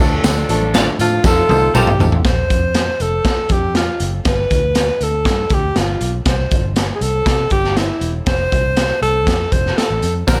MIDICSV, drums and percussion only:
0, 0, Header, 1, 2, 480
1, 0, Start_track
1, 0, Tempo, 501672
1, 230, Time_signature, 4, 2, 24, 8
1, 9951, End_track
2, 0, Start_track
2, 0, Title_t, "Drums"
2, 0, Note_on_c, 9, 54, 49
2, 95, Note_off_c, 9, 54, 0
2, 227, Note_on_c, 9, 42, 85
2, 231, Note_on_c, 9, 54, 103
2, 232, Note_on_c, 9, 38, 117
2, 240, Note_on_c, 9, 62, 26
2, 323, Note_off_c, 9, 42, 0
2, 326, Note_off_c, 9, 54, 0
2, 328, Note_off_c, 9, 38, 0
2, 336, Note_off_c, 9, 62, 0
2, 469, Note_on_c, 9, 54, 55
2, 470, Note_on_c, 9, 62, 35
2, 471, Note_on_c, 9, 42, 73
2, 565, Note_off_c, 9, 54, 0
2, 566, Note_off_c, 9, 42, 0
2, 566, Note_off_c, 9, 62, 0
2, 587, Note_on_c, 9, 63, 72
2, 683, Note_off_c, 9, 63, 0
2, 708, Note_on_c, 9, 62, 26
2, 708, Note_on_c, 9, 63, 59
2, 709, Note_on_c, 9, 42, 97
2, 716, Note_on_c, 9, 38, 117
2, 716, Note_on_c, 9, 54, 94
2, 803, Note_off_c, 9, 62, 0
2, 803, Note_off_c, 9, 63, 0
2, 805, Note_off_c, 9, 42, 0
2, 811, Note_off_c, 9, 54, 0
2, 812, Note_off_c, 9, 38, 0
2, 824, Note_on_c, 9, 64, 83
2, 920, Note_off_c, 9, 64, 0
2, 951, Note_on_c, 9, 54, 58
2, 952, Note_on_c, 9, 42, 67
2, 952, Note_on_c, 9, 62, 32
2, 952, Note_on_c, 9, 64, 67
2, 1047, Note_off_c, 9, 54, 0
2, 1048, Note_off_c, 9, 42, 0
2, 1048, Note_off_c, 9, 62, 0
2, 1048, Note_off_c, 9, 64, 0
2, 1186, Note_on_c, 9, 54, 79
2, 1187, Note_on_c, 9, 36, 92
2, 1194, Note_on_c, 9, 38, 54
2, 1195, Note_on_c, 9, 63, 51
2, 1281, Note_off_c, 9, 54, 0
2, 1283, Note_off_c, 9, 36, 0
2, 1290, Note_off_c, 9, 38, 0
2, 1290, Note_off_c, 9, 63, 0
2, 1429, Note_on_c, 9, 48, 76
2, 1433, Note_on_c, 9, 62, 33
2, 1444, Note_on_c, 9, 54, 47
2, 1524, Note_off_c, 9, 48, 0
2, 1528, Note_off_c, 9, 62, 0
2, 1540, Note_off_c, 9, 54, 0
2, 1672, Note_on_c, 9, 47, 87
2, 1672, Note_on_c, 9, 54, 102
2, 1768, Note_off_c, 9, 47, 0
2, 1768, Note_off_c, 9, 54, 0
2, 1787, Note_on_c, 9, 63, 79
2, 1792, Note_on_c, 9, 45, 87
2, 1883, Note_off_c, 9, 63, 0
2, 1888, Note_off_c, 9, 45, 0
2, 1910, Note_on_c, 9, 62, 36
2, 1910, Note_on_c, 9, 64, 73
2, 1916, Note_on_c, 9, 43, 97
2, 1921, Note_on_c, 9, 54, 46
2, 2006, Note_off_c, 9, 62, 0
2, 2006, Note_off_c, 9, 64, 0
2, 2012, Note_off_c, 9, 43, 0
2, 2017, Note_off_c, 9, 54, 0
2, 2031, Note_on_c, 9, 43, 102
2, 2127, Note_off_c, 9, 43, 0
2, 2148, Note_on_c, 9, 42, 78
2, 2150, Note_on_c, 9, 36, 108
2, 2153, Note_on_c, 9, 38, 105
2, 2244, Note_off_c, 9, 42, 0
2, 2246, Note_off_c, 9, 36, 0
2, 2248, Note_off_c, 9, 38, 0
2, 2394, Note_on_c, 9, 42, 65
2, 2396, Note_on_c, 9, 36, 83
2, 2489, Note_off_c, 9, 42, 0
2, 2491, Note_off_c, 9, 36, 0
2, 2626, Note_on_c, 9, 42, 98
2, 2633, Note_on_c, 9, 38, 112
2, 2721, Note_off_c, 9, 42, 0
2, 2728, Note_off_c, 9, 38, 0
2, 2870, Note_on_c, 9, 42, 59
2, 2965, Note_off_c, 9, 42, 0
2, 3106, Note_on_c, 9, 36, 79
2, 3108, Note_on_c, 9, 42, 72
2, 3115, Note_on_c, 9, 38, 99
2, 3202, Note_off_c, 9, 36, 0
2, 3204, Note_off_c, 9, 42, 0
2, 3210, Note_off_c, 9, 38, 0
2, 3340, Note_on_c, 9, 42, 60
2, 3347, Note_on_c, 9, 36, 82
2, 3435, Note_off_c, 9, 42, 0
2, 3443, Note_off_c, 9, 36, 0
2, 3588, Note_on_c, 9, 38, 99
2, 3588, Note_on_c, 9, 42, 77
2, 3683, Note_off_c, 9, 38, 0
2, 3683, Note_off_c, 9, 42, 0
2, 3825, Note_on_c, 9, 42, 62
2, 3921, Note_off_c, 9, 42, 0
2, 4066, Note_on_c, 9, 42, 78
2, 4070, Note_on_c, 9, 36, 98
2, 4071, Note_on_c, 9, 38, 102
2, 4162, Note_off_c, 9, 42, 0
2, 4165, Note_off_c, 9, 36, 0
2, 4166, Note_off_c, 9, 38, 0
2, 4310, Note_on_c, 9, 42, 73
2, 4314, Note_on_c, 9, 36, 81
2, 4406, Note_off_c, 9, 42, 0
2, 4410, Note_off_c, 9, 36, 0
2, 4544, Note_on_c, 9, 42, 97
2, 4551, Note_on_c, 9, 38, 109
2, 4640, Note_off_c, 9, 42, 0
2, 4647, Note_off_c, 9, 38, 0
2, 4791, Note_on_c, 9, 42, 56
2, 4887, Note_off_c, 9, 42, 0
2, 5026, Note_on_c, 9, 36, 85
2, 5026, Note_on_c, 9, 42, 82
2, 5033, Note_on_c, 9, 38, 96
2, 5122, Note_off_c, 9, 36, 0
2, 5122, Note_off_c, 9, 42, 0
2, 5128, Note_off_c, 9, 38, 0
2, 5258, Note_on_c, 9, 42, 59
2, 5267, Note_on_c, 9, 36, 84
2, 5354, Note_off_c, 9, 42, 0
2, 5362, Note_off_c, 9, 36, 0
2, 5509, Note_on_c, 9, 38, 96
2, 5509, Note_on_c, 9, 42, 85
2, 5605, Note_off_c, 9, 38, 0
2, 5605, Note_off_c, 9, 42, 0
2, 5748, Note_on_c, 9, 42, 57
2, 5843, Note_off_c, 9, 42, 0
2, 5985, Note_on_c, 9, 42, 84
2, 5988, Note_on_c, 9, 36, 104
2, 5990, Note_on_c, 9, 38, 113
2, 6081, Note_off_c, 9, 42, 0
2, 6084, Note_off_c, 9, 36, 0
2, 6086, Note_off_c, 9, 38, 0
2, 6229, Note_on_c, 9, 42, 65
2, 6234, Note_on_c, 9, 36, 85
2, 6325, Note_off_c, 9, 42, 0
2, 6330, Note_off_c, 9, 36, 0
2, 6467, Note_on_c, 9, 42, 91
2, 6474, Note_on_c, 9, 38, 120
2, 6562, Note_off_c, 9, 42, 0
2, 6569, Note_off_c, 9, 38, 0
2, 6711, Note_on_c, 9, 42, 64
2, 6806, Note_off_c, 9, 42, 0
2, 6947, Note_on_c, 9, 36, 95
2, 6949, Note_on_c, 9, 42, 76
2, 6955, Note_on_c, 9, 38, 93
2, 7042, Note_off_c, 9, 36, 0
2, 7045, Note_off_c, 9, 42, 0
2, 7051, Note_off_c, 9, 38, 0
2, 7177, Note_on_c, 9, 42, 57
2, 7187, Note_on_c, 9, 36, 81
2, 7273, Note_off_c, 9, 42, 0
2, 7282, Note_off_c, 9, 36, 0
2, 7313, Note_on_c, 9, 38, 36
2, 7408, Note_off_c, 9, 38, 0
2, 7432, Note_on_c, 9, 38, 107
2, 7432, Note_on_c, 9, 42, 94
2, 7528, Note_off_c, 9, 38, 0
2, 7528, Note_off_c, 9, 42, 0
2, 7666, Note_on_c, 9, 42, 55
2, 7761, Note_off_c, 9, 42, 0
2, 7905, Note_on_c, 9, 42, 82
2, 7910, Note_on_c, 9, 36, 113
2, 7910, Note_on_c, 9, 38, 118
2, 8001, Note_off_c, 9, 42, 0
2, 8005, Note_off_c, 9, 36, 0
2, 8005, Note_off_c, 9, 38, 0
2, 8153, Note_on_c, 9, 42, 72
2, 8155, Note_on_c, 9, 36, 87
2, 8248, Note_off_c, 9, 42, 0
2, 8251, Note_off_c, 9, 36, 0
2, 8386, Note_on_c, 9, 42, 91
2, 8393, Note_on_c, 9, 38, 110
2, 8482, Note_off_c, 9, 42, 0
2, 8489, Note_off_c, 9, 38, 0
2, 8635, Note_on_c, 9, 42, 57
2, 8731, Note_off_c, 9, 42, 0
2, 8869, Note_on_c, 9, 36, 86
2, 8875, Note_on_c, 9, 42, 86
2, 8881, Note_on_c, 9, 38, 107
2, 8964, Note_off_c, 9, 36, 0
2, 8970, Note_off_c, 9, 42, 0
2, 8977, Note_off_c, 9, 38, 0
2, 9109, Note_on_c, 9, 42, 65
2, 9110, Note_on_c, 9, 36, 79
2, 9204, Note_off_c, 9, 42, 0
2, 9206, Note_off_c, 9, 36, 0
2, 9242, Note_on_c, 9, 38, 34
2, 9338, Note_off_c, 9, 38, 0
2, 9358, Note_on_c, 9, 38, 99
2, 9358, Note_on_c, 9, 42, 86
2, 9454, Note_off_c, 9, 38, 0
2, 9454, Note_off_c, 9, 42, 0
2, 9591, Note_on_c, 9, 42, 58
2, 9687, Note_off_c, 9, 42, 0
2, 9833, Note_on_c, 9, 36, 94
2, 9834, Note_on_c, 9, 42, 79
2, 9834, Note_on_c, 9, 54, 90
2, 9839, Note_on_c, 9, 38, 99
2, 9929, Note_off_c, 9, 36, 0
2, 9930, Note_off_c, 9, 42, 0
2, 9930, Note_off_c, 9, 54, 0
2, 9934, Note_off_c, 9, 38, 0
2, 9951, End_track
0, 0, End_of_file